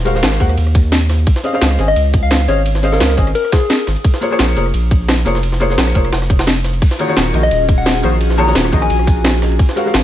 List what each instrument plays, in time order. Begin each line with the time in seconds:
Already playing: sub bass D#1
0.05 felt piano G#3 F#4 A#4 C5 F5, closed hi-hat, ride, shaker
0.14 felt piano G#3 F#4 A#4 C5 F5, snare
0.23 sub bass G#1, snare, closed hi-hat, ride
0.32 cross-stick, snare
0.39 sub bass D#2, felt piano G#3 F#4 A#4 C5 F#5, kick, closed hi-hat, ride, shaker
0.49 cross-stick, ride
0.57 sub bass D#2, closed hi-hat, ride
0.67 cross-stick
0.75 kick, closed hi-hat, open hi-hat, shaker
0.92 snare, closed hi-hat, ride
1.01 shaker
1.09 cross-stick, snare, closed hi-hat, ride, shaker
1.19 ride
1.27 kick, closed hi-hat, ride
1.36 snare
1.43 felt piano C#4 G#4 C5 D#5 F5, closed hi-hat, ride, shaker
1.53 felt piano C#4 G#4 C5 D#5 F5
1.61 sub bass C#2, snare, closed hi-hat, ride
1.71 cross-stick
1.78 sub bass G#1, felt piano C#4 G#4 C5 D#5 G#5, closed hi-hat, ride, shaker
1.88 soft synth lead D#5, cross-stick
1.96 sub bass C#2, closed hi-hat, ride
2.14 kick, closed hi-hat, ride, shaker
2.23 soft synth lead F5
2.31 snare, closed hi-hat, ride
2.40 snare, shaker
2.48 sub bass G#1, felt piano C#4 G#4 C5 D#5 F5, soft synth lead C#5, closed hi-hat, ride, shaker
2.66 closed hi-hat, ride
2.75 snare
2.83 felt piano C#4 G#4 C5 D#5 F5, closed hi-hat, ride, shaker
2.92 felt piano C#4 G#4 C5 D#5 F5, soft synth lead A#4, snare
3.00 sub bass C#2, snare, closed hi-hat, ride
3.10 cross-stick, snare
3.17 sub bass G#1, felt piano C#4 G#4 C5 D#5 G#5, kick, closed hi-hat, ride, shaker
3.27 cross-stick, ride
3.35 soft synth lead A#4, closed hi-hat, ride
3.45 cross-stick
3.52 soft synth lead G#4, kick, snare, closed hi-hat, ride, shaker
3.70 snare, closed hi-hat, ride
3.79 shaker
3.87 sub bass G#1, cross-stick, snare, closed hi-hat, ride, shaker
3.96 ride
4.04 kick, closed hi-hat, ride
4.14 snare
4.21 felt piano A#3 F4 G#4 C5 C#5, closed hi-hat, ride, shaker
4.30 felt piano A#3 F4 G#4 C5 C#5
4.39 sub bass A#1, snare, closed hi-hat, ride
4.49 cross-stick
4.56 sub bass F1, felt piano A#3 F4 G#4 C5 C#5, closed hi-hat, ride, shaker
4.66 cross-stick
4.74 sub bass A#1, closed hi-hat, ride
4.91 kick, closed hi-hat, ride, shaker
5.08 snare, closed hi-hat, ride
5.18 snare, shaker
5.25 sub bass F1, felt piano A#3 F4 G#4 C5 C#5, closed hi-hat, ride, shaker
5.35 snare
5.43 closed hi-hat, ride
5.52 snare
5.60 felt piano A#3 F4 G#4 C5 C#5, closed hi-hat, ride, shaker
5.69 felt piano A#3 F4 G#4 C5 C#5, snare, shaker
5.78 sub bass A#1, snare, closed hi-hat, ride
5.87 cross-stick, snare
5.94 sub bass F1, felt piano A#3 F4 G#4 C5 C#5, kick, closed hi-hat, ride, shaker
6.04 cross-stick, ride
6.12 sub bass F1, snare, closed hi-hat, ride
6.22 cross-stick, snare
6.30 kick, closed hi-hat, ride, shaker
6.39 snare, ride
6.47 snare, closed hi-hat
6.56 ride, shaker
6.64 cross-stick, snare, closed hi-hat, ride, shaker
6.74 ride
6.82 analog synth pad C#4 F4 F#4 G#4, kick, closed hi-hat, crash, ride
6.91 snare
6.99 felt piano D#3 A#3 F4 F#4 G#4 C#5, closed hi-hat, ride, shaker
7.07 felt piano D#3 A#3 F4 F#4 G#4 C#5
7.17 sub bass D#1, snare, closed hi-hat, ride
7.26 cross-stick
7.33 sub bass A#1, felt piano D#3 A#3 F4 F#4 G#4 D#5, closed hi-hat, ride, shaker
7.43 soft synth lead D#5, cross-stick, shaker
7.51 sub bass D#1, closed hi-hat, ride
7.69 kick, closed hi-hat, ride, shaker
7.78 soft synth lead F#5
7.86 snare, closed hi-hat, ride
7.95 snare
8.03 sub bass A#1, felt piano D#3 A#3 F4 F#4 G#4 C5, closed hi-hat, ride, shaker
8.21 closed hi-hat, ride
8.30 snare
8.37 felt piano D#3 A#3 F4 F#4 G#4 C#5, soft synth lead A#5, closed hi-hat, ride, shaker
8.47 felt piano D#3 A#3 F4 F#4 G#4 C#5, snare
8.55 sub bass D#1, snare, closed hi-hat, ride
8.65 cross-stick, snare
8.72 sub bass A#1, felt piano D#3 A#3 F4 F#4 G#4 D#5, kick, closed hi-hat, ride, shaker
8.82 soft synth lead G#5, cross-stick, ride, shaker
8.90 sub bass A#1, closed hi-hat, ride
8.99 cross-stick
9.07 kick, closed hi-hat, open hi-hat, shaker
9.24 snare, closed hi-hat, ride
9.42 cross-stick, snare, closed hi-hat, ride, shaker
9.51 ride
9.59 analog synth pad C4 F4 A#4, kick, closed hi-hat, ride
9.69 snare
9.76 felt piano G#3 F#4 A#4 C5 F5, closed hi-hat, ride, shaker
9.85 felt piano G#3 F#4 A#4 C5 F5
9.94 sub bass G#1, snare, closed hi-hat, ride